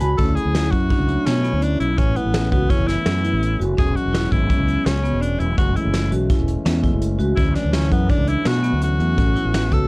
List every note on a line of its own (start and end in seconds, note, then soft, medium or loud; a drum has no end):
0.00 0.18 C#2 medium
0.00 0.12 F#4 medium
0.00 0.16 B5 loud
0.00 closed hi-hat medium
0.18 0.36 D2 medium
0.18 1.94 F#3 medium
0.18 1.94 A3 medium
0.18 0.42 C#4 medium
0.18 1.95 C#4 medium
0.18 1.95 E4 medium
0.18 0.36 A4 medium
0.18 kick medium
0.18 closed hi-hat medium
0.35 0.73 G#4 medium
0.35 closed hi-hat medium
0.45 0.71 D2 medium
0.55 0.78 E4 medium
0.55 snare medium
0.55 closed hi-hat medium
0.71 0.89 F#2 medium
0.71 1.27 F#4 medium
0.71 kick medium
0.71 closed hi-hat medium
0.90 1.02 D4 medium
0.90 kick medium
0.90 closed hi-hat medium
0.99 1.16 C#2 medium
1.08 1.31 D4 medium
1.08 closed hi-hat soft
1.26 1.52 B2 medium
1.26 1.64 C#4 medium
1.26 snare medium
1.26 closed hi-hat medium
1.44 1.55 B3 medium
1.44 closed hi-hat medium
1.53 1.78 D2 medium
1.62 1.85 C#4 medium
1.62 1.79 D4 medium
1.62 closed hi-hat medium
1.80 1.97 B1 medium
1.80 2.00 E4 medium
1.80 closed hi-hat medium
1.96 2.15 A1 medium
1.96 3.73 E3 medium
1.96 3.74 A3 medium
1.96 3.74 B3 medium
1.96 2.09 C#4 medium
1.96 2.18 C#4 medium
1.96 3.74 C#4 medium
1.96 kick medium
1.96 closed hi-hat medium
2.16 2.51 B3 medium
2.16 2.39 E4 medium
2.16 closed hi-hat medium
2.25 2.50 A1 medium
2.34 snare loud
2.34 closed hi-hat medium
2.51 2.69 C#2 medium
2.51 2.71 B3 medium
2.51 2.63 F#4 medium
2.51 kick medium
2.51 closed hi-hat medium
2.70 2.89 C#4 medium
2.70 2.93 E4 medium
2.70 kick medium
2.70 closed hi-hat medium
2.78 2.95 F#1 medium
2.87 3.60 E4 medium
2.87 snare soft
2.87 closed hi-hat medium
3.05 3.31 F#2 medium
3.05 3.17 C#4 medium
3.05 snare medium
3.05 closed hi-hat medium
3.24 3.47 E4 medium
3.24 closed hi-hat medium
3.33 3.58 A1 medium
3.43 closed hi-hat medium
3.59 3.77 F#1 medium
3.59 3.71 F#4 medium
3.59 closed hi-hat medium
3.76 3.95 E1 medium
3.76 5.53 F#3 medium
3.76 5.53 G#3 medium
3.76 5.54 B3 medium
3.76 4.00 C#4 medium
3.76 5.54 C#4 medium
3.76 3.98 G#4 medium
3.76 kick loud
3.76 closed hi-hat medium
3.96 4.33 F#4 medium
3.96 closed hi-hat medium
4.05 4.30 E1 medium
4.13 4.36 E4 medium
4.13 snare medium
4.13 closed hi-hat medium
4.31 4.49 G#1 medium
4.31 4.88 E4 medium
4.31 kick medium
4.31 closed hi-hat medium
4.49 4.61 C#4 medium
4.49 kick medium
4.49 closed hi-hat medium
4.59 4.76 C#2 medium
4.67 4.91 C#4 medium
4.67 closed hi-hat medium
4.86 5.11 C#2 medium
4.86 5.23 C#4 medium
4.86 snare medium
4.86 closed hi-hat medium
5.03 5.15 B3 medium
5.03 closed hi-hat medium
5.12 5.38 E1 medium
5.21 5.44 C#4 medium
5.21 5.41 D4 medium
5.21 closed hi-hat medium
5.40 5.57 E1 medium
5.40 5.57 E4 medium
5.40 closed hi-hat medium
5.56 5.74 F#1 medium
5.56 7.33 E3 medium
5.56 7.34 G#3 medium
5.56 7.34 A3 medium
5.56 5.69 C#4 medium
5.56 7.34 C#4 medium
5.56 5.77 F#4 medium
5.56 kick medium
5.56 closed hi-hat medium
5.75 5.98 E4 medium
5.75 6.12 E4 medium
5.75 closed hi-hat medium
5.85 6.10 F#1 medium
5.93 snare loud
5.93 closed hi-hat medium
6.11 6.28 B1 medium
6.11 6.23 F#4 medium
6.11 closed hi-hat medium
6.30 6.53 E4 medium
6.30 kick medium
6.30 closed hi-hat medium
6.39 6.56 E1 medium
6.48 closed hi-hat medium
6.65 6.91 E2 medium
6.65 6.77 C#4 medium
6.65 snare medium
6.65 closed hi-hat medium
6.83 7.07 E4 medium
6.83 kick medium
6.83 closed hi-hat medium
6.93 7.18 F#1 medium
7.02 closed hi-hat medium
7.19 7.37 C#2 medium
7.19 7.31 F#4 medium
7.19 closed hi-hat soft
7.36 7.55 D2 medium
7.36 9.13 E3 medium
7.36 9.13 F#3 medium
7.36 9.14 A3 medium
7.36 7.60 C#4 medium
7.36 9.14 C#4 medium
7.36 7.57 E4 medium
7.36 kick medium
7.36 closed hi-hat medium
7.56 7.75 D4 medium
7.56 snare soft
7.56 closed hi-hat medium
7.64 7.90 D2 medium
7.73 7.91 C#4 medium
7.73 7.96 E4 medium
7.73 snare loud
7.73 closed hi-hat medium
7.92 8.09 F#2 medium
7.92 8.12 B3 medium
7.92 kick medium
7.92 closed hi-hat medium
8.09 8.21 D4 medium
8.09 8.31 D4 medium
8.09 kick medium
8.09 closed hi-hat medium
8.18 8.35 C#2 medium
8.27 8.51 D4 medium
8.27 8.49 E4 medium
8.27 closed hi-hat medium
8.45 8.71 B2 medium
8.45 8.82 F#4 medium
8.45 snare medium
8.45 closed hi-hat medium
8.63 8.75 B3 medium
8.63 closed hi-hat medium
8.72 8.98 D2 medium
8.81 9.05 C#4 medium
8.81 9.75 F#4 medium
8.81 closed hi-hat medium
9.00 9.17 E2 medium
9.00 closed hi-hat medium
9.15 9.35 A1 medium
9.15 9.88 E3 medium
9.15 9.88 A3 medium
9.15 9.88 B3 medium
9.15 9.29 C#4 medium
9.15 9.88 C#4 medium
9.15 kick medium
9.15 closed hi-hat medium
9.36 9.59 E4 medium
9.36 closed hi-hat medium
9.45 9.70 A1 medium
9.54 snare loud
9.54 closed hi-hat medium
9.72 9.88 C#2 medium
9.72 9.83 F#4 medium
9.72 9.88 A4 medium
9.72 kick medium
9.72 closed hi-hat medium